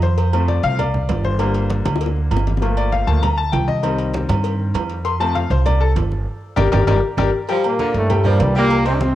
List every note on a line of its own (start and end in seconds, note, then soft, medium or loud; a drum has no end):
0.00 0.58 F2 loud
0.00 0.45 C5 medium
0.00 cowbell medium
0.00 high conga medium
0.18 cowbell loud
0.18 low agogo medium
0.33 0.76 F3 medium
0.33 0.77 A3 medium
0.33 0.77 C4 medium
0.33 low agogo loud
0.48 0.63 D5 medium
0.48 cowbell medium
0.48 high conga medium
0.48 low timbale medium
0.63 1.06 C2 loud
0.63 0.78 F5 loud
0.63 cowbell medium
0.79 1.22 D5 medium
0.79 cowbell loud
0.79 high conga soft
0.79 low conga medium
0.79 low agogo loud
0.94 high conga soft
0.94 low conga medium
1.09 1.80 G1 loud
1.09 cowbell medium
1.09 high conga medium
1.09 low timbale medium
1.09 low agogo medium
1.24 1.67 C5 medium
1.24 high conga medium
1.39 2.58 D3 medium
1.39 2.58 G3 medium
1.39 2.58 A#3 medium
1.39 cowbell loud
1.39 low agogo loud
1.55 cowbell medium
1.55 high conga soft
1.55 low agogo medium
1.70 cowbell medium
1.70 high conga medium
1.70 low timbale medium
1.85 2.28 D2 loud
1.85 cowbell medium
1.85 high bongo medium
1.85 high conga loud
1.85 low agogo loud
1.96 high bongo loud
2.01 cowbell loud
2.01 low agogo medium
2.06 high bongo medium
2.17 high conga soft
2.31 3.02 G1 loud
2.31 cowbell medium
2.31 low timbale medium
2.31 low agogo loud
2.37 low bongo loud
2.47 cowbell medium
2.47 low bongo medium
2.47 high conga medium
2.57 low bongo medium
2.62 3.05 F3 medium
2.62 3.06 A3 medium
2.62 3.07 A#3 medium
2.62 cowbell loud
2.62 low agogo medium
2.77 2.92 D5 medium
2.77 high conga soft
2.77 low agogo loud
2.92 3.07 F5 medium
2.92 cowbell medium
2.92 high conga medium
2.92 low timbale medium
3.07 3.50 D2 medium
3.07 3.21 F3 medium
3.07 3.21 A3 soft
3.07 3.22 A#3 medium
3.07 3.22 A5 loud
3.07 cowbell medium
3.23 3.37 A#5 loud
3.23 cowbell loud
3.23 high conga soft
3.23 low conga medium
3.23 low agogo loud
3.38 3.52 A5 medium
3.38 high conga soft
3.52 4.24 C2 loud
3.52 3.67 G5 medium
3.52 cowbell medium
3.52 high conga medium
3.52 low timbale medium
3.52 low agogo medium
3.68 4.11 D#5 medium
3.68 high conga medium
3.83 5.01 D#3 medium
3.83 5.01 G3 medium
3.83 5.01 C4 medium
3.83 cowbell loud
3.83 high conga soft
3.83 low agogo loud
3.98 cowbell medium
3.98 low agogo medium
4.14 cowbell medium
4.14 high conga loud
4.14 low timbale medium
4.29 4.71 G2 loud
4.29 cowbell medium
4.29 high conga loud
4.29 low agogo loud
4.44 cowbell loud
4.44 high conga soft
4.44 low agogo medium
4.60 high conga soft
4.74 5.45 F2 medium
4.74 cowbell medium
4.74 high conga soft
4.74 low timbale medium
4.74 low agogo loud
4.90 cowbell medium
5.05 5.20 C6 loud
5.05 cowbell loud
5.05 high conga soft
5.05 low agogo medium
5.20 5.40 F3 medium
5.20 5.41 A3 medium
5.20 5.41 C4 medium
5.20 5.35 A5 medium
5.20 high conga soft
5.20 low agogo loud
5.35 5.50 F5 medium
5.35 cowbell medium
5.35 high conga medium
5.35 low timbale medium
5.50 5.93 C2 loud
5.50 5.66 C5 medium
5.50 cowbell medium
5.66 5.81 D5 medium
5.66 cowbell loud
5.66 high conga soft
5.66 low conga medium
5.66 low agogo loud
5.81 5.90 A4 loud
5.81 high conga soft
5.96 6.25 G1 loud
5.96 cowbell medium
5.96 high conga medium
5.96 low timbale medium
5.96 low agogo medium
6.12 high conga medium
6.56 6.69 G1 loud
6.56 6.67 G4 loud
6.56 6.67 A#4 loud
6.56 6.67 D5 medium
6.56 cowbell loud
6.56 high conga loud
6.56 high timbale loud
6.72 6.84 G1 loud
6.72 6.82 G4 loud
6.72 6.82 A#4 medium
6.72 6.82 D5 medium
6.72 cowbell loud
6.72 high conga loud
6.72 high timbale loud
6.87 6.99 G1 loud
6.87 6.97 G4 loud
6.87 6.97 A#4 medium
6.87 6.97 D5 loud
6.87 cowbell loud
6.87 high conga loud
6.87 high timbale loud
7.17 7.29 G1 loud
7.17 7.28 G4 loud
7.17 7.28 A#4 loud
7.17 7.28 D5 loud
7.17 cowbell loud
7.17 high conga loud
7.17 high timbale loud
7.48 7.65 F3 medium
7.48 7.56 F3 medium
7.48 7.74 G3 medium
7.48 7.57 F4 medium
7.48 7.74 G4 medium
7.48 7.74 G5 medium
7.48 cowbell loud
7.48 high conga soft
7.48 low agogo medium
7.64 7.93 A#2 medium
7.64 7.93 A#3 medium
7.64 high conga soft
7.64 low agogo loud
7.79 8.03 D3 medium
7.79 8.04 A#3 medium
7.79 8.04 A#4 medium
7.79 8.05 D5 medium
7.79 cowbell medium
7.79 high conga medium
7.79 low timbale medium
7.94 8.37 G2 loud
7.94 8.23 A2 medium
7.94 8.23 A3 loud
7.94 cowbell medium
7.94 high conga soft
8.10 8.22 G3 medium
8.10 8.22 G4 medium
8.10 8.22 G5 medium
8.10 cowbell loud
8.10 high conga soft
8.10 low conga medium
8.10 low agogo loud
8.24 8.56 G2 medium
8.24 8.40 F3 medium
8.24 8.56 G3 medium
8.24 8.50 A#3 medium
8.24 8.50 A#4 medium
8.24 8.50 D5 medium
8.24 high conga soft
8.24 low conga medium
8.40 9.11 C2 loud
8.40 cowbell medium
8.40 high conga medium
8.40 low timbale medium
8.40 low agogo medium
8.55 8.85 A#2 medium
8.55 8.80 G3 medium
8.55 8.72 G3 medium
8.55 8.85 A#3 loud
8.55 8.80 G4 medium
8.55 8.81 G5 loud
8.55 high conga medium
8.70 cowbell loud
8.70 low agogo loud
8.85 9.10 C3 medium
8.85 8.93 C3 medium
8.85 9.10 C4 medium
8.85 8.93 C4 loud
8.85 9.11 C5 medium
8.85 9.11 D#5 medium
8.85 cowbell medium
8.85 high conga soft
8.85 low agogo medium
8.93 9.00 D4 medium
9.01 9.15 C3 medium
9.01 9.15 C4 medium
9.01 cowbell medium
9.01 high conga loud
9.01 low timbale medium